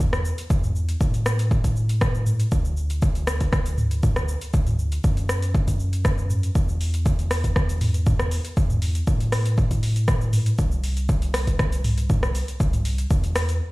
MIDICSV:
0, 0, Header, 1, 3, 480
1, 0, Start_track
1, 0, Tempo, 504202
1, 478, Time_signature, 4, 2, 24, 8
1, 13060, End_track
2, 0, Start_track
2, 0, Title_t, "Sub bass"
2, 0, Program_c, 0, 38
2, 0, Note_on_c, 0, 40, 97
2, 313, Note_off_c, 0, 40, 0
2, 478, Note_on_c, 0, 40, 95
2, 912, Note_off_c, 0, 40, 0
2, 958, Note_on_c, 0, 45, 93
2, 2352, Note_off_c, 0, 45, 0
2, 2398, Note_on_c, 0, 38, 96
2, 4154, Note_off_c, 0, 38, 0
2, 4319, Note_on_c, 0, 38, 98
2, 4753, Note_off_c, 0, 38, 0
2, 4799, Note_on_c, 0, 42, 94
2, 6193, Note_off_c, 0, 42, 0
2, 6238, Note_on_c, 0, 40, 98
2, 7994, Note_off_c, 0, 40, 0
2, 8158, Note_on_c, 0, 40, 97
2, 8593, Note_off_c, 0, 40, 0
2, 8637, Note_on_c, 0, 45, 93
2, 10032, Note_off_c, 0, 45, 0
2, 10077, Note_on_c, 0, 36, 97
2, 11833, Note_off_c, 0, 36, 0
2, 11997, Note_on_c, 0, 36, 99
2, 12432, Note_off_c, 0, 36, 0
2, 12476, Note_on_c, 0, 40, 96
2, 12957, Note_off_c, 0, 40, 0
2, 13060, End_track
3, 0, Start_track
3, 0, Title_t, "Drums"
3, 0, Note_on_c, 9, 36, 119
3, 0, Note_on_c, 9, 45, 87
3, 0, Note_on_c, 9, 69, 93
3, 93, Note_off_c, 9, 36, 0
3, 93, Note_off_c, 9, 45, 0
3, 95, Note_off_c, 9, 69, 0
3, 123, Note_on_c, 9, 37, 94
3, 124, Note_on_c, 9, 69, 50
3, 218, Note_off_c, 9, 37, 0
3, 219, Note_off_c, 9, 69, 0
3, 238, Note_on_c, 9, 69, 89
3, 334, Note_off_c, 9, 69, 0
3, 363, Note_on_c, 9, 42, 54
3, 364, Note_on_c, 9, 69, 49
3, 458, Note_off_c, 9, 42, 0
3, 459, Note_off_c, 9, 69, 0
3, 478, Note_on_c, 9, 36, 118
3, 479, Note_on_c, 9, 69, 94
3, 573, Note_off_c, 9, 36, 0
3, 574, Note_off_c, 9, 69, 0
3, 605, Note_on_c, 9, 45, 76
3, 606, Note_on_c, 9, 69, 53
3, 700, Note_off_c, 9, 45, 0
3, 701, Note_off_c, 9, 69, 0
3, 720, Note_on_c, 9, 69, 51
3, 815, Note_off_c, 9, 69, 0
3, 844, Note_on_c, 9, 42, 53
3, 845, Note_on_c, 9, 69, 53
3, 939, Note_off_c, 9, 42, 0
3, 940, Note_off_c, 9, 69, 0
3, 958, Note_on_c, 9, 36, 119
3, 959, Note_on_c, 9, 69, 96
3, 1053, Note_off_c, 9, 36, 0
3, 1055, Note_off_c, 9, 69, 0
3, 1085, Note_on_c, 9, 42, 42
3, 1087, Note_on_c, 9, 69, 55
3, 1180, Note_off_c, 9, 42, 0
3, 1182, Note_off_c, 9, 69, 0
3, 1199, Note_on_c, 9, 37, 96
3, 1200, Note_on_c, 9, 69, 98
3, 1294, Note_off_c, 9, 37, 0
3, 1295, Note_off_c, 9, 69, 0
3, 1325, Note_on_c, 9, 42, 52
3, 1326, Note_on_c, 9, 69, 52
3, 1420, Note_off_c, 9, 42, 0
3, 1421, Note_off_c, 9, 69, 0
3, 1438, Note_on_c, 9, 36, 117
3, 1439, Note_on_c, 9, 69, 53
3, 1533, Note_off_c, 9, 36, 0
3, 1534, Note_off_c, 9, 69, 0
3, 1564, Note_on_c, 9, 36, 64
3, 1564, Note_on_c, 9, 42, 43
3, 1565, Note_on_c, 9, 69, 92
3, 1659, Note_off_c, 9, 36, 0
3, 1659, Note_off_c, 9, 42, 0
3, 1660, Note_off_c, 9, 69, 0
3, 1678, Note_on_c, 9, 69, 53
3, 1773, Note_off_c, 9, 69, 0
3, 1802, Note_on_c, 9, 42, 52
3, 1804, Note_on_c, 9, 69, 52
3, 1898, Note_off_c, 9, 42, 0
3, 1899, Note_off_c, 9, 69, 0
3, 1916, Note_on_c, 9, 37, 99
3, 1917, Note_on_c, 9, 69, 94
3, 1918, Note_on_c, 9, 36, 120
3, 2011, Note_off_c, 9, 37, 0
3, 2012, Note_off_c, 9, 69, 0
3, 2014, Note_off_c, 9, 36, 0
3, 2043, Note_on_c, 9, 69, 53
3, 2138, Note_off_c, 9, 69, 0
3, 2155, Note_on_c, 9, 45, 73
3, 2157, Note_on_c, 9, 69, 92
3, 2251, Note_off_c, 9, 45, 0
3, 2252, Note_off_c, 9, 69, 0
3, 2281, Note_on_c, 9, 42, 52
3, 2283, Note_on_c, 9, 69, 53
3, 2377, Note_off_c, 9, 42, 0
3, 2378, Note_off_c, 9, 69, 0
3, 2396, Note_on_c, 9, 69, 92
3, 2398, Note_on_c, 9, 36, 121
3, 2491, Note_off_c, 9, 69, 0
3, 2493, Note_off_c, 9, 36, 0
3, 2521, Note_on_c, 9, 69, 56
3, 2616, Note_off_c, 9, 69, 0
3, 2635, Note_on_c, 9, 69, 53
3, 2731, Note_off_c, 9, 69, 0
3, 2761, Note_on_c, 9, 42, 52
3, 2762, Note_on_c, 9, 69, 56
3, 2856, Note_off_c, 9, 42, 0
3, 2857, Note_off_c, 9, 69, 0
3, 2876, Note_on_c, 9, 69, 96
3, 2879, Note_on_c, 9, 36, 126
3, 2971, Note_off_c, 9, 69, 0
3, 2974, Note_off_c, 9, 36, 0
3, 3001, Note_on_c, 9, 42, 42
3, 3003, Note_on_c, 9, 69, 54
3, 3097, Note_off_c, 9, 42, 0
3, 3098, Note_off_c, 9, 69, 0
3, 3115, Note_on_c, 9, 37, 96
3, 3117, Note_on_c, 9, 69, 97
3, 3211, Note_off_c, 9, 37, 0
3, 3212, Note_off_c, 9, 69, 0
3, 3242, Note_on_c, 9, 42, 54
3, 3243, Note_on_c, 9, 69, 53
3, 3244, Note_on_c, 9, 36, 64
3, 3337, Note_off_c, 9, 42, 0
3, 3338, Note_off_c, 9, 69, 0
3, 3339, Note_off_c, 9, 36, 0
3, 3356, Note_on_c, 9, 37, 95
3, 3358, Note_on_c, 9, 69, 55
3, 3359, Note_on_c, 9, 36, 119
3, 3452, Note_off_c, 9, 37, 0
3, 3453, Note_off_c, 9, 69, 0
3, 3454, Note_off_c, 9, 36, 0
3, 3482, Note_on_c, 9, 42, 41
3, 3483, Note_on_c, 9, 69, 93
3, 3577, Note_off_c, 9, 42, 0
3, 3578, Note_off_c, 9, 69, 0
3, 3596, Note_on_c, 9, 45, 88
3, 3598, Note_on_c, 9, 69, 54
3, 3691, Note_off_c, 9, 45, 0
3, 3693, Note_off_c, 9, 69, 0
3, 3723, Note_on_c, 9, 42, 53
3, 3724, Note_on_c, 9, 69, 56
3, 3818, Note_off_c, 9, 42, 0
3, 3819, Note_off_c, 9, 69, 0
3, 3836, Note_on_c, 9, 45, 90
3, 3838, Note_on_c, 9, 69, 96
3, 3839, Note_on_c, 9, 36, 124
3, 3931, Note_off_c, 9, 45, 0
3, 3933, Note_off_c, 9, 69, 0
3, 3934, Note_off_c, 9, 36, 0
3, 3962, Note_on_c, 9, 37, 92
3, 3964, Note_on_c, 9, 69, 55
3, 4058, Note_off_c, 9, 37, 0
3, 4059, Note_off_c, 9, 69, 0
3, 4078, Note_on_c, 9, 69, 93
3, 4174, Note_off_c, 9, 69, 0
3, 4203, Note_on_c, 9, 42, 49
3, 4204, Note_on_c, 9, 69, 55
3, 4298, Note_off_c, 9, 42, 0
3, 4299, Note_off_c, 9, 69, 0
3, 4318, Note_on_c, 9, 69, 90
3, 4319, Note_on_c, 9, 36, 119
3, 4413, Note_off_c, 9, 69, 0
3, 4414, Note_off_c, 9, 36, 0
3, 4443, Note_on_c, 9, 42, 30
3, 4443, Note_on_c, 9, 45, 86
3, 4444, Note_on_c, 9, 69, 52
3, 4538, Note_off_c, 9, 42, 0
3, 4538, Note_off_c, 9, 45, 0
3, 4539, Note_off_c, 9, 69, 0
3, 4559, Note_on_c, 9, 69, 53
3, 4654, Note_off_c, 9, 69, 0
3, 4683, Note_on_c, 9, 42, 53
3, 4684, Note_on_c, 9, 69, 53
3, 4778, Note_off_c, 9, 42, 0
3, 4780, Note_off_c, 9, 69, 0
3, 4799, Note_on_c, 9, 36, 125
3, 4799, Note_on_c, 9, 69, 97
3, 4894, Note_off_c, 9, 69, 0
3, 4895, Note_off_c, 9, 36, 0
3, 4923, Note_on_c, 9, 42, 43
3, 4924, Note_on_c, 9, 69, 53
3, 5018, Note_off_c, 9, 42, 0
3, 5019, Note_off_c, 9, 69, 0
3, 5038, Note_on_c, 9, 37, 89
3, 5039, Note_on_c, 9, 69, 95
3, 5133, Note_off_c, 9, 37, 0
3, 5134, Note_off_c, 9, 69, 0
3, 5164, Note_on_c, 9, 42, 54
3, 5165, Note_on_c, 9, 69, 54
3, 5259, Note_off_c, 9, 42, 0
3, 5261, Note_off_c, 9, 69, 0
3, 5279, Note_on_c, 9, 36, 124
3, 5281, Note_on_c, 9, 69, 53
3, 5374, Note_off_c, 9, 36, 0
3, 5376, Note_off_c, 9, 69, 0
3, 5404, Note_on_c, 9, 36, 63
3, 5404, Note_on_c, 9, 42, 42
3, 5405, Note_on_c, 9, 69, 94
3, 5499, Note_off_c, 9, 42, 0
3, 5500, Note_off_c, 9, 36, 0
3, 5501, Note_off_c, 9, 69, 0
3, 5519, Note_on_c, 9, 69, 52
3, 5614, Note_off_c, 9, 69, 0
3, 5644, Note_on_c, 9, 42, 54
3, 5646, Note_on_c, 9, 69, 51
3, 5740, Note_off_c, 9, 42, 0
3, 5741, Note_off_c, 9, 69, 0
3, 5758, Note_on_c, 9, 37, 89
3, 5759, Note_on_c, 9, 36, 120
3, 5759, Note_on_c, 9, 69, 93
3, 5853, Note_off_c, 9, 37, 0
3, 5854, Note_off_c, 9, 36, 0
3, 5854, Note_off_c, 9, 69, 0
3, 5885, Note_on_c, 9, 69, 55
3, 5980, Note_off_c, 9, 69, 0
3, 5998, Note_on_c, 9, 45, 78
3, 6000, Note_on_c, 9, 69, 96
3, 6093, Note_off_c, 9, 45, 0
3, 6095, Note_off_c, 9, 69, 0
3, 6124, Note_on_c, 9, 42, 53
3, 6126, Note_on_c, 9, 69, 53
3, 6220, Note_off_c, 9, 42, 0
3, 6221, Note_off_c, 9, 69, 0
3, 6239, Note_on_c, 9, 36, 115
3, 6240, Note_on_c, 9, 69, 86
3, 6334, Note_off_c, 9, 36, 0
3, 6335, Note_off_c, 9, 69, 0
3, 6365, Note_on_c, 9, 69, 52
3, 6460, Note_off_c, 9, 69, 0
3, 6480, Note_on_c, 9, 46, 83
3, 6481, Note_on_c, 9, 69, 53
3, 6575, Note_off_c, 9, 46, 0
3, 6577, Note_off_c, 9, 69, 0
3, 6605, Note_on_c, 9, 42, 56
3, 6607, Note_on_c, 9, 69, 52
3, 6701, Note_off_c, 9, 42, 0
3, 6702, Note_off_c, 9, 69, 0
3, 6719, Note_on_c, 9, 36, 117
3, 6719, Note_on_c, 9, 69, 93
3, 6814, Note_off_c, 9, 36, 0
3, 6814, Note_off_c, 9, 69, 0
3, 6844, Note_on_c, 9, 42, 44
3, 6845, Note_on_c, 9, 69, 50
3, 6939, Note_off_c, 9, 42, 0
3, 6940, Note_off_c, 9, 69, 0
3, 6957, Note_on_c, 9, 37, 92
3, 6957, Note_on_c, 9, 46, 77
3, 6958, Note_on_c, 9, 69, 94
3, 7052, Note_off_c, 9, 37, 0
3, 7052, Note_off_c, 9, 46, 0
3, 7053, Note_off_c, 9, 69, 0
3, 7084, Note_on_c, 9, 36, 60
3, 7084, Note_on_c, 9, 42, 56
3, 7085, Note_on_c, 9, 69, 52
3, 7179, Note_off_c, 9, 36, 0
3, 7179, Note_off_c, 9, 42, 0
3, 7180, Note_off_c, 9, 69, 0
3, 7196, Note_on_c, 9, 37, 85
3, 7197, Note_on_c, 9, 69, 52
3, 7199, Note_on_c, 9, 36, 117
3, 7291, Note_off_c, 9, 37, 0
3, 7293, Note_off_c, 9, 69, 0
3, 7294, Note_off_c, 9, 36, 0
3, 7323, Note_on_c, 9, 42, 44
3, 7324, Note_on_c, 9, 69, 89
3, 7418, Note_off_c, 9, 42, 0
3, 7419, Note_off_c, 9, 69, 0
3, 7436, Note_on_c, 9, 45, 96
3, 7436, Note_on_c, 9, 46, 83
3, 7437, Note_on_c, 9, 69, 53
3, 7531, Note_off_c, 9, 45, 0
3, 7531, Note_off_c, 9, 46, 0
3, 7532, Note_off_c, 9, 69, 0
3, 7562, Note_on_c, 9, 42, 55
3, 7563, Note_on_c, 9, 69, 52
3, 7657, Note_off_c, 9, 42, 0
3, 7658, Note_off_c, 9, 69, 0
3, 7675, Note_on_c, 9, 45, 96
3, 7676, Note_on_c, 9, 69, 92
3, 7679, Note_on_c, 9, 36, 118
3, 7770, Note_off_c, 9, 45, 0
3, 7771, Note_off_c, 9, 69, 0
3, 7774, Note_off_c, 9, 36, 0
3, 7801, Note_on_c, 9, 37, 90
3, 7803, Note_on_c, 9, 69, 51
3, 7897, Note_off_c, 9, 37, 0
3, 7898, Note_off_c, 9, 69, 0
3, 7915, Note_on_c, 9, 46, 74
3, 7916, Note_on_c, 9, 69, 91
3, 8010, Note_off_c, 9, 46, 0
3, 8011, Note_off_c, 9, 69, 0
3, 8041, Note_on_c, 9, 42, 55
3, 8042, Note_on_c, 9, 69, 51
3, 8136, Note_off_c, 9, 42, 0
3, 8137, Note_off_c, 9, 69, 0
3, 8158, Note_on_c, 9, 69, 87
3, 8159, Note_on_c, 9, 36, 112
3, 8253, Note_off_c, 9, 69, 0
3, 8254, Note_off_c, 9, 36, 0
3, 8281, Note_on_c, 9, 45, 86
3, 8283, Note_on_c, 9, 69, 51
3, 8377, Note_off_c, 9, 45, 0
3, 8378, Note_off_c, 9, 69, 0
3, 8396, Note_on_c, 9, 46, 89
3, 8397, Note_on_c, 9, 69, 50
3, 8491, Note_off_c, 9, 46, 0
3, 8492, Note_off_c, 9, 69, 0
3, 8521, Note_on_c, 9, 42, 57
3, 8523, Note_on_c, 9, 69, 50
3, 8617, Note_off_c, 9, 42, 0
3, 8618, Note_off_c, 9, 69, 0
3, 8637, Note_on_c, 9, 69, 90
3, 8638, Note_on_c, 9, 36, 114
3, 8732, Note_off_c, 9, 69, 0
3, 8733, Note_off_c, 9, 36, 0
3, 8763, Note_on_c, 9, 42, 45
3, 8764, Note_on_c, 9, 69, 50
3, 8858, Note_off_c, 9, 42, 0
3, 8859, Note_off_c, 9, 69, 0
3, 8876, Note_on_c, 9, 37, 91
3, 8876, Note_on_c, 9, 46, 81
3, 8877, Note_on_c, 9, 69, 91
3, 8971, Note_off_c, 9, 37, 0
3, 8971, Note_off_c, 9, 46, 0
3, 8972, Note_off_c, 9, 69, 0
3, 9002, Note_on_c, 9, 42, 57
3, 9003, Note_on_c, 9, 69, 50
3, 9097, Note_off_c, 9, 42, 0
3, 9098, Note_off_c, 9, 69, 0
3, 9116, Note_on_c, 9, 69, 53
3, 9118, Note_on_c, 9, 36, 111
3, 9212, Note_off_c, 9, 69, 0
3, 9213, Note_off_c, 9, 36, 0
3, 9242, Note_on_c, 9, 42, 45
3, 9244, Note_on_c, 9, 36, 57
3, 9244, Note_on_c, 9, 69, 87
3, 9338, Note_off_c, 9, 42, 0
3, 9339, Note_off_c, 9, 36, 0
3, 9339, Note_off_c, 9, 69, 0
3, 9357, Note_on_c, 9, 46, 86
3, 9359, Note_on_c, 9, 69, 50
3, 9452, Note_off_c, 9, 46, 0
3, 9454, Note_off_c, 9, 69, 0
3, 9482, Note_on_c, 9, 42, 59
3, 9484, Note_on_c, 9, 69, 52
3, 9578, Note_off_c, 9, 42, 0
3, 9579, Note_off_c, 9, 69, 0
3, 9595, Note_on_c, 9, 37, 87
3, 9596, Note_on_c, 9, 69, 88
3, 9598, Note_on_c, 9, 36, 118
3, 9690, Note_off_c, 9, 37, 0
3, 9691, Note_off_c, 9, 69, 0
3, 9693, Note_off_c, 9, 36, 0
3, 9722, Note_on_c, 9, 69, 52
3, 9817, Note_off_c, 9, 69, 0
3, 9834, Note_on_c, 9, 45, 83
3, 9834, Note_on_c, 9, 46, 76
3, 9836, Note_on_c, 9, 69, 91
3, 9930, Note_off_c, 9, 45, 0
3, 9930, Note_off_c, 9, 46, 0
3, 9931, Note_off_c, 9, 69, 0
3, 9960, Note_on_c, 9, 42, 57
3, 9961, Note_on_c, 9, 69, 49
3, 10055, Note_off_c, 9, 42, 0
3, 10056, Note_off_c, 9, 69, 0
3, 10075, Note_on_c, 9, 69, 85
3, 10078, Note_on_c, 9, 36, 110
3, 10171, Note_off_c, 9, 69, 0
3, 10173, Note_off_c, 9, 36, 0
3, 10201, Note_on_c, 9, 69, 51
3, 10296, Note_off_c, 9, 69, 0
3, 10316, Note_on_c, 9, 46, 91
3, 10317, Note_on_c, 9, 69, 49
3, 10411, Note_off_c, 9, 46, 0
3, 10412, Note_off_c, 9, 69, 0
3, 10442, Note_on_c, 9, 42, 59
3, 10443, Note_on_c, 9, 69, 50
3, 10537, Note_off_c, 9, 42, 0
3, 10538, Note_off_c, 9, 69, 0
3, 10556, Note_on_c, 9, 69, 88
3, 10557, Note_on_c, 9, 36, 112
3, 10651, Note_off_c, 9, 69, 0
3, 10653, Note_off_c, 9, 36, 0
3, 10681, Note_on_c, 9, 42, 46
3, 10682, Note_on_c, 9, 69, 50
3, 10776, Note_off_c, 9, 42, 0
3, 10778, Note_off_c, 9, 69, 0
3, 10795, Note_on_c, 9, 37, 92
3, 10795, Note_on_c, 9, 46, 82
3, 10796, Note_on_c, 9, 69, 89
3, 10890, Note_off_c, 9, 37, 0
3, 10890, Note_off_c, 9, 46, 0
3, 10892, Note_off_c, 9, 69, 0
3, 10923, Note_on_c, 9, 36, 59
3, 10923, Note_on_c, 9, 42, 59
3, 10924, Note_on_c, 9, 69, 48
3, 11018, Note_off_c, 9, 36, 0
3, 11018, Note_off_c, 9, 42, 0
3, 11019, Note_off_c, 9, 69, 0
3, 11036, Note_on_c, 9, 37, 88
3, 11037, Note_on_c, 9, 36, 110
3, 11037, Note_on_c, 9, 69, 51
3, 11131, Note_off_c, 9, 37, 0
3, 11132, Note_off_c, 9, 36, 0
3, 11132, Note_off_c, 9, 69, 0
3, 11161, Note_on_c, 9, 42, 47
3, 11162, Note_on_c, 9, 69, 87
3, 11256, Note_off_c, 9, 42, 0
3, 11258, Note_off_c, 9, 69, 0
3, 11275, Note_on_c, 9, 45, 92
3, 11275, Note_on_c, 9, 46, 93
3, 11277, Note_on_c, 9, 69, 50
3, 11371, Note_off_c, 9, 45, 0
3, 11371, Note_off_c, 9, 46, 0
3, 11372, Note_off_c, 9, 69, 0
3, 11401, Note_on_c, 9, 42, 57
3, 11402, Note_on_c, 9, 69, 50
3, 11496, Note_off_c, 9, 42, 0
3, 11498, Note_off_c, 9, 69, 0
3, 11515, Note_on_c, 9, 45, 98
3, 11516, Note_on_c, 9, 69, 87
3, 11517, Note_on_c, 9, 36, 112
3, 11610, Note_off_c, 9, 45, 0
3, 11611, Note_off_c, 9, 69, 0
3, 11612, Note_off_c, 9, 36, 0
3, 11642, Note_on_c, 9, 37, 90
3, 11643, Note_on_c, 9, 69, 50
3, 11737, Note_off_c, 9, 37, 0
3, 11738, Note_off_c, 9, 69, 0
3, 11756, Note_on_c, 9, 46, 78
3, 11758, Note_on_c, 9, 69, 84
3, 11852, Note_off_c, 9, 46, 0
3, 11853, Note_off_c, 9, 69, 0
3, 11883, Note_on_c, 9, 42, 56
3, 11885, Note_on_c, 9, 69, 49
3, 11979, Note_off_c, 9, 42, 0
3, 11980, Note_off_c, 9, 69, 0
3, 11997, Note_on_c, 9, 36, 111
3, 11997, Note_on_c, 9, 69, 86
3, 12092, Note_off_c, 9, 36, 0
3, 12092, Note_off_c, 9, 69, 0
3, 12122, Note_on_c, 9, 42, 33
3, 12122, Note_on_c, 9, 45, 84
3, 12123, Note_on_c, 9, 69, 51
3, 12217, Note_off_c, 9, 42, 0
3, 12217, Note_off_c, 9, 45, 0
3, 12218, Note_off_c, 9, 69, 0
3, 12234, Note_on_c, 9, 46, 92
3, 12235, Note_on_c, 9, 69, 51
3, 12329, Note_off_c, 9, 46, 0
3, 12331, Note_off_c, 9, 69, 0
3, 12360, Note_on_c, 9, 42, 58
3, 12362, Note_on_c, 9, 69, 51
3, 12455, Note_off_c, 9, 42, 0
3, 12457, Note_off_c, 9, 69, 0
3, 12477, Note_on_c, 9, 36, 115
3, 12477, Note_on_c, 9, 69, 92
3, 12572, Note_off_c, 9, 36, 0
3, 12572, Note_off_c, 9, 69, 0
3, 12601, Note_on_c, 9, 42, 46
3, 12602, Note_on_c, 9, 69, 50
3, 12696, Note_off_c, 9, 42, 0
3, 12697, Note_off_c, 9, 69, 0
3, 12715, Note_on_c, 9, 37, 97
3, 12715, Note_on_c, 9, 46, 84
3, 12716, Note_on_c, 9, 69, 91
3, 12810, Note_off_c, 9, 37, 0
3, 12810, Note_off_c, 9, 46, 0
3, 12811, Note_off_c, 9, 69, 0
3, 12841, Note_on_c, 9, 42, 57
3, 12842, Note_on_c, 9, 69, 49
3, 12936, Note_off_c, 9, 42, 0
3, 12937, Note_off_c, 9, 69, 0
3, 13060, End_track
0, 0, End_of_file